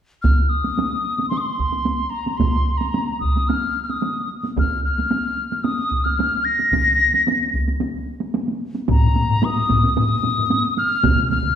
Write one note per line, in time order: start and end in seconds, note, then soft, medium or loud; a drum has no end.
0.22 0.42 F6 medium
0.22 taiko medium
0.22 taiko high medium
0.42 0.51 F6 soft
0.49 1.29 D#6 medium
0.64 taiko high soft
0.78 taiko high medium
1.18 taiko high soft
1.29 1.39 C6 medium
1.29 taiko high medium
1.37 2.11 C6 medium
1.37 1.43 D#6 medium
1.59 taiko medium
1.72 taiko high soft
1.86 taiko high medium
2.10 2.39 A#5 medium
2.26 taiko high soft
2.37 2.79 C6 medium
2.37 taiko medium
2.37 taiko high medium
2.77 3.20 A#5 medium
2.77 taiko high soft
2.94 taiko high medium
3.20 3.50 D#6 medium
3.20 taiko medium
3.36 taiko high soft
3.48 3.82 F6 medium
3.48 taiko high medium
3.83 3.92 F6 soft
3.90 4.30 D#6 medium
3.90 taiko high soft
4.03 taiko high medium
4.43 taiko high soft
4.57 4.83 F6 medium
4.57 taiko medium
4.57 taiko high medium
4.84 5.56 F6 medium
4.98 taiko high soft
5.11 taiko high medium
5.52 taiko high soft
5.56 5.65 F6 medium
5.64 6.06 D#6 medium
5.64 taiko high medium
5.91 taiko soft
6.04 6.46 F6 medium
6.04 taiko high soft
6.19 taiko high medium
6.45 7.53 A#6 medium
6.59 taiko high soft
6.72 taiko medium
6.72 taiko high medium
7.14 taiko high soft
7.27 taiko high medium
7.54 taiko medium
7.68 taiko high soft
7.81 taiko high medium
8.21 taiko high soft
8.34 taiko high medium
8.48 taiko high soft
8.74 taiko high soft
8.89 9.46 A#5 medium
8.89 taiko medium
8.89 taiko low-mid medium
8.89 taiko high medium
9.03 taiko low-mid medium
9.16 taiko low-mid medium
9.16 taiko high medium
9.30 taiko low-mid medium
9.30 taiko high soft
9.42 9.98 D#6 medium
9.42 taiko low-mid loud
9.42 taiko high medium
9.56 taiko high soft
9.69 taiko medium
9.69 taiko low-mid medium
9.69 taiko high medium
9.83 taiko low-mid medium
9.83 taiko high soft
9.97 10.74 D#6 loud
9.97 taiko low-mid medium
9.97 taiko high medium
10.09 taiko high soft
10.23 taiko low-mid medium
10.23 taiko high medium
10.37 taiko low-mid medium
10.37 taiko high soft
10.50 taiko high medium
10.64 taiko high soft
10.77 11.28 F6 medium
10.77 taiko high soft
10.91 taiko high soft
11.03 taiko medium
11.03 taiko mid medium
11.03 taiko high medium
11.16 taiko mid medium
11.16 taiko high soft
11.30 11.55 F6 medium
11.30 taiko mid medium
11.30 taiko high medium
11.43 taiko mid medium
11.43 taiko high soft